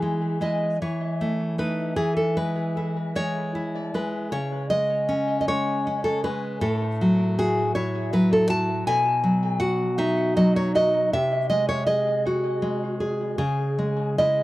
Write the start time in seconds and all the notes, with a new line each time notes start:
Already playing: E3 G#4
0.02 G#3
0.41 G#3 E4 D#5
0.82 E3 C#5
1.21 A3
1.58 A3 D#4 B4
1.96 E3 G#4
2.17 A4
2.37 G#3 B4
2.77 E4
3.15 G#3 C#5
3.55 E4
3.94 G#3 B4
4.32 C#3 C#5
4.70 G#3 D#5
5.09 C#4
5.41 D#5
5.48 G#3 C#5
5.87 C#4
6.04 A4
6.24 G#3 B4
6.61 A2 A4
7.01 F#3
7.39 F#4 G#4
7.75 E4 C#5
8.13 F#3 B4
8.33 A4
8.49 F#4 A5
8.87 B2 G#5
9.24 F#3
9.60 F#4 F#5
9.98 D#4 E5
10.37 F#3 D#5
10.56 C#5
10.75 F#4 D#5
11.13 C3 E5
11.50 G#3 D#5
11.69 C#5
11.87 G#4 D#5
12.27 F#4
12.62 G#3
13.00 G#4
13.38 C#3 G#4
13.79 G#3
14.18 G#3 E4 D#5